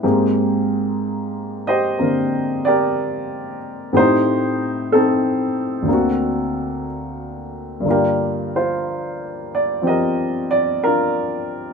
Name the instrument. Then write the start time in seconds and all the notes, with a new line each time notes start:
grand piano
0.03 G#2 G#3 A#3 C4 G4
1.67 G4 C5 D#5
1.99 D3 A#3 C4 A#4
2.65 G4 A#4 D5
3.93 A2 A3 C4 D#4 G4 C5
3.99 D#4 G4
4.92 C4 D#4 A4
5.82 D2 D3
5.88 A#3 C4
5.93 F#4
7.80 G2 D3
7.86 A#3 F4
7.90 D4 G4 A#4
8.56 F4 C5
9.55 D5
9.82 F3 C4 G4
9.87 A#4 D#5
10.51 D5
10.84 D4 F4 A#4